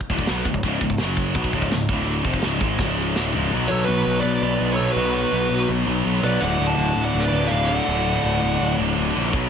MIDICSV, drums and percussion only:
0, 0, Header, 1, 2, 480
1, 0, Start_track
1, 0, Tempo, 359928
1, 856, Time_signature, 4, 2, 24, 8
1, 6141, Tempo, 364742
1, 12575, End_track
2, 0, Start_track
2, 0, Title_t, "Drums"
2, 8, Note_on_c, 9, 36, 72
2, 130, Note_off_c, 9, 36, 0
2, 130, Note_on_c, 9, 36, 76
2, 248, Note_off_c, 9, 36, 0
2, 248, Note_on_c, 9, 36, 81
2, 355, Note_on_c, 9, 46, 51
2, 363, Note_on_c, 9, 38, 100
2, 381, Note_off_c, 9, 36, 0
2, 489, Note_off_c, 9, 46, 0
2, 497, Note_off_c, 9, 38, 0
2, 604, Note_on_c, 9, 36, 77
2, 722, Note_off_c, 9, 36, 0
2, 722, Note_on_c, 9, 36, 94
2, 839, Note_on_c, 9, 46, 62
2, 843, Note_off_c, 9, 36, 0
2, 843, Note_on_c, 9, 36, 105
2, 972, Note_off_c, 9, 46, 0
2, 977, Note_off_c, 9, 36, 0
2, 1081, Note_on_c, 9, 36, 82
2, 1198, Note_off_c, 9, 36, 0
2, 1198, Note_on_c, 9, 36, 76
2, 1303, Note_on_c, 9, 46, 59
2, 1311, Note_on_c, 9, 38, 119
2, 1331, Note_off_c, 9, 36, 0
2, 1436, Note_off_c, 9, 46, 0
2, 1444, Note_off_c, 9, 38, 0
2, 1559, Note_on_c, 9, 36, 82
2, 1692, Note_off_c, 9, 36, 0
2, 1791, Note_on_c, 9, 46, 57
2, 1799, Note_on_c, 9, 36, 116
2, 1923, Note_off_c, 9, 36, 0
2, 1923, Note_on_c, 9, 36, 83
2, 1924, Note_off_c, 9, 46, 0
2, 2044, Note_off_c, 9, 36, 0
2, 2044, Note_on_c, 9, 36, 84
2, 2160, Note_off_c, 9, 36, 0
2, 2160, Note_on_c, 9, 36, 81
2, 2281, Note_on_c, 9, 46, 51
2, 2289, Note_on_c, 9, 38, 101
2, 2294, Note_off_c, 9, 36, 0
2, 2415, Note_off_c, 9, 46, 0
2, 2423, Note_off_c, 9, 38, 0
2, 2519, Note_on_c, 9, 36, 98
2, 2652, Note_off_c, 9, 36, 0
2, 2756, Note_on_c, 9, 46, 66
2, 2889, Note_off_c, 9, 46, 0
2, 2996, Note_on_c, 9, 36, 83
2, 3114, Note_off_c, 9, 36, 0
2, 3114, Note_on_c, 9, 36, 85
2, 3227, Note_on_c, 9, 46, 69
2, 3235, Note_on_c, 9, 38, 117
2, 3248, Note_off_c, 9, 36, 0
2, 3360, Note_off_c, 9, 46, 0
2, 3368, Note_off_c, 9, 38, 0
2, 3479, Note_on_c, 9, 36, 85
2, 3612, Note_off_c, 9, 36, 0
2, 3717, Note_on_c, 9, 36, 102
2, 3722, Note_on_c, 9, 38, 64
2, 3851, Note_off_c, 9, 36, 0
2, 3856, Note_off_c, 9, 38, 0
2, 4214, Note_on_c, 9, 38, 86
2, 4348, Note_off_c, 9, 38, 0
2, 4438, Note_on_c, 9, 43, 77
2, 4572, Note_off_c, 9, 43, 0
2, 12363, Note_on_c, 9, 49, 117
2, 12364, Note_on_c, 9, 36, 123
2, 12495, Note_off_c, 9, 36, 0
2, 12495, Note_off_c, 9, 49, 0
2, 12575, End_track
0, 0, End_of_file